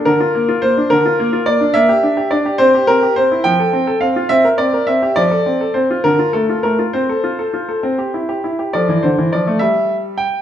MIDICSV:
0, 0, Header, 1, 2, 480
1, 0, Start_track
1, 0, Key_signature, -1, "major"
1, 0, Tempo, 567644
1, 46, Time_signature, 6, 3, 24, 8
1, 4366, Tempo, 595829
1, 7246, Tempo, 578035
1, 8641, End_track
2, 0, Start_track
2, 0, Title_t, "Grand piano"
2, 0, Program_c, 0, 0
2, 45, Note_on_c, 0, 70, 68
2, 53, Note_on_c, 0, 50, 53
2, 166, Note_off_c, 0, 50, 0
2, 172, Note_on_c, 0, 65, 41
2, 294, Note_off_c, 0, 65, 0
2, 294, Note_on_c, 0, 58, 42
2, 410, Note_on_c, 0, 65, 49
2, 415, Note_off_c, 0, 58, 0
2, 522, Note_on_c, 0, 72, 66
2, 523, Note_off_c, 0, 70, 0
2, 530, Note_on_c, 0, 58, 36
2, 532, Note_off_c, 0, 65, 0
2, 652, Note_off_c, 0, 58, 0
2, 654, Note_on_c, 0, 62, 44
2, 761, Note_off_c, 0, 72, 0
2, 762, Note_on_c, 0, 70, 73
2, 773, Note_off_c, 0, 62, 0
2, 773, Note_on_c, 0, 50, 53
2, 883, Note_off_c, 0, 50, 0
2, 892, Note_on_c, 0, 65, 45
2, 1011, Note_off_c, 0, 65, 0
2, 1011, Note_on_c, 0, 58, 48
2, 1122, Note_on_c, 0, 65, 42
2, 1129, Note_off_c, 0, 58, 0
2, 1202, Note_off_c, 0, 70, 0
2, 1234, Note_on_c, 0, 74, 71
2, 1244, Note_on_c, 0, 58, 40
2, 1245, Note_off_c, 0, 65, 0
2, 1356, Note_on_c, 0, 62, 46
2, 1366, Note_off_c, 0, 58, 0
2, 1469, Note_on_c, 0, 76, 79
2, 1475, Note_off_c, 0, 74, 0
2, 1476, Note_off_c, 0, 62, 0
2, 1476, Note_on_c, 0, 58, 53
2, 1593, Note_off_c, 0, 58, 0
2, 1598, Note_on_c, 0, 67, 48
2, 1716, Note_on_c, 0, 62, 42
2, 1723, Note_off_c, 0, 67, 0
2, 1835, Note_on_c, 0, 67, 48
2, 1843, Note_off_c, 0, 62, 0
2, 1950, Note_on_c, 0, 74, 60
2, 1954, Note_off_c, 0, 76, 0
2, 1959, Note_on_c, 0, 62, 43
2, 1962, Note_off_c, 0, 67, 0
2, 2076, Note_on_c, 0, 67, 46
2, 2084, Note_off_c, 0, 62, 0
2, 2184, Note_on_c, 0, 72, 83
2, 2193, Note_on_c, 0, 60, 60
2, 2194, Note_off_c, 0, 74, 0
2, 2197, Note_off_c, 0, 67, 0
2, 2312, Note_off_c, 0, 60, 0
2, 2321, Note_on_c, 0, 67, 47
2, 2430, Note_on_c, 0, 70, 75
2, 2432, Note_off_c, 0, 72, 0
2, 2439, Note_on_c, 0, 60, 45
2, 2446, Note_off_c, 0, 67, 0
2, 2559, Note_on_c, 0, 67, 44
2, 2565, Note_off_c, 0, 60, 0
2, 2651, Note_off_c, 0, 70, 0
2, 2673, Note_on_c, 0, 72, 74
2, 2683, Note_on_c, 0, 60, 39
2, 2685, Note_off_c, 0, 67, 0
2, 2804, Note_on_c, 0, 64, 42
2, 2807, Note_off_c, 0, 60, 0
2, 2909, Note_on_c, 0, 79, 81
2, 2916, Note_off_c, 0, 72, 0
2, 2919, Note_on_c, 0, 53, 53
2, 2921, Note_off_c, 0, 64, 0
2, 3034, Note_off_c, 0, 53, 0
2, 3039, Note_on_c, 0, 69, 44
2, 3155, Note_on_c, 0, 60, 44
2, 3163, Note_off_c, 0, 69, 0
2, 3275, Note_on_c, 0, 69, 48
2, 3281, Note_off_c, 0, 60, 0
2, 3357, Note_off_c, 0, 79, 0
2, 3387, Note_on_c, 0, 77, 58
2, 3397, Note_on_c, 0, 60, 40
2, 3402, Note_off_c, 0, 69, 0
2, 3519, Note_on_c, 0, 65, 42
2, 3523, Note_off_c, 0, 60, 0
2, 3608, Note_off_c, 0, 77, 0
2, 3629, Note_on_c, 0, 76, 84
2, 3638, Note_on_c, 0, 60, 60
2, 3639, Note_off_c, 0, 65, 0
2, 3755, Note_off_c, 0, 60, 0
2, 3759, Note_on_c, 0, 70, 44
2, 3777, Note_off_c, 0, 76, 0
2, 3872, Note_on_c, 0, 74, 69
2, 3882, Note_on_c, 0, 60, 42
2, 3886, Note_off_c, 0, 70, 0
2, 4003, Note_on_c, 0, 70, 42
2, 4008, Note_off_c, 0, 60, 0
2, 4094, Note_off_c, 0, 74, 0
2, 4116, Note_on_c, 0, 76, 67
2, 4126, Note_on_c, 0, 60, 41
2, 4130, Note_off_c, 0, 70, 0
2, 4249, Note_on_c, 0, 67, 39
2, 4252, Note_off_c, 0, 60, 0
2, 4361, Note_on_c, 0, 74, 73
2, 4364, Note_off_c, 0, 76, 0
2, 4369, Note_off_c, 0, 67, 0
2, 4370, Note_on_c, 0, 53, 54
2, 4482, Note_off_c, 0, 53, 0
2, 4486, Note_on_c, 0, 69, 40
2, 4605, Note_on_c, 0, 60, 39
2, 4609, Note_off_c, 0, 69, 0
2, 4725, Note_on_c, 0, 69, 42
2, 4727, Note_off_c, 0, 60, 0
2, 4831, Note_on_c, 0, 72, 52
2, 4834, Note_off_c, 0, 74, 0
2, 4837, Note_on_c, 0, 60, 37
2, 4846, Note_off_c, 0, 69, 0
2, 4961, Note_off_c, 0, 60, 0
2, 4964, Note_on_c, 0, 65, 41
2, 5069, Note_off_c, 0, 72, 0
2, 5071, Note_on_c, 0, 70, 70
2, 5077, Note_off_c, 0, 65, 0
2, 5077, Note_on_c, 0, 50, 54
2, 5189, Note_off_c, 0, 50, 0
2, 5194, Note_on_c, 0, 65, 35
2, 5307, Note_on_c, 0, 69, 59
2, 5309, Note_off_c, 0, 70, 0
2, 5315, Note_on_c, 0, 57, 38
2, 5317, Note_off_c, 0, 65, 0
2, 5437, Note_off_c, 0, 57, 0
2, 5438, Note_on_c, 0, 65, 35
2, 5524, Note_off_c, 0, 69, 0
2, 5548, Note_on_c, 0, 70, 56
2, 5556, Note_on_c, 0, 57, 35
2, 5560, Note_off_c, 0, 65, 0
2, 5675, Note_on_c, 0, 65, 36
2, 5679, Note_off_c, 0, 57, 0
2, 5694, Note_off_c, 0, 70, 0
2, 5792, Note_on_c, 0, 72, 59
2, 5794, Note_off_c, 0, 65, 0
2, 5798, Note_on_c, 0, 60, 48
2, 5914, Note_off_c, 0, 60, 0
2, 5921, Note_on_c, 0, 69, 37
2, 6037, Note_on_c, 0, 65, 36
2, 6046, Note_off_c, 0, 69, 0
2, 6159, Note_on_c, 0, 69, 40
2, 6164, Note_off_c, 0, 65, 0
2, 6277, Note_on_c, 0, 65, 33
2, 6286, Note_off_c, 0, 69, 0
2, 6399, Note_on_c, 0, 69, 36
2, 6405, Note_off_c, 0, 65, 0
2, 6516, Note_on_c, 0, 60, 50
2, 6521, Note_off_c, 0, 69, 0
2, 6637, Note_off_c, 0, 60, 0
2, 6639, Note_on_c, 0, 67, 37
2, 6765, Note_on_c, 0, 64, 33
2, 6769, Note_off_c, 0, 67, 0
2, 6884, Note_on_c, 0, 67, 34
2, 6893, Note_off_c, 0, 64, 0
2, 6978, Note_off_c, 0, 72, 0
2, 7006, Note_on_c, 0, 64, 35
2, 7014, Note_off_c, 0, 67, 0
2, 7127, Note_on_c, 0, 67, 35
2, 7134, Note_off_c, 0, 64, 0
2, 7242, Note_on_c, 0, 74, 62
2, 7247, Note_off_c, 0, 67, 0
2, 7252, Note_on_c, 0, 53, 48
2, 7252, Note_on_c, 0, 69, 31
2, 7366, Note_off_c, 0, 53, 0
2, 7370, Note_on_c, 0, 52, 46
2, 7485, Note_off_c, 0, 52, 0
2, 7485, Note_on_c, 0, 72, 51
2, 7488, Note_off_c, 0, 74, 0
2, 7493, Note_on_c, 0, 50, 47
2, 7608, Note_off_c, 0, 50, 0
2, 7615, Note_on_c, 0, 52, 45
2, 7706, Note_off_c, 0, 72, 0
2, 7729, Note_off_c, 0, 52, 0
2, 7733, Note_on_c, 0, 74, 56
2, 7740, Note_on_c, 0, 53, 43
2, 7851, Note_off_c, 0, 53, 0
2, 7855, Note_on_c, 0, 57, 46
2, 7942, Note_off_c, 0, 69, 0
2, 7950, Note_off_c, 0, 74, 0
2, 7956, Note_on_c, 0, 76, 65
2, 7968, Note_off_c, 0, 57, 0
2, 7969, Note_on_c, 0, 55, 55
2, 8248, Note_off_c, 0, 76, 0
2, 8439, Note_on_c, 0, 79, 60
2, 8485, Note_off_c, 0, 55, 0
2, 8641, Note_off_c, 0, 79, 0
2, 8641, End_track
0, 0, End_of_file